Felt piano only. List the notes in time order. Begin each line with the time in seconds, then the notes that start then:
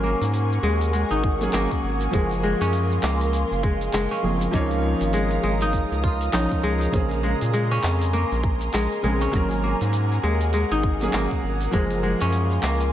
Already playing: F#3 A#3 C#4 A#4
1.39 F#3 A#3 C#4
1.43 G#4
2.11 F3 A#3 G#4 C5
4.22 F3 A#3 C4 G#4
4.51 F3 C#4 D#4 C#5
6.32 F3 C#4 D#4 C#5
6.91 C#3 A#3 C5
6.95 G#4
9.02 C#3 A#3 C4 G#4
9.32 F#3 A#3 C#4 A#4
11.00 F#3 A#3 C#4 G#4
11.71 F3 A#3 G#4 C5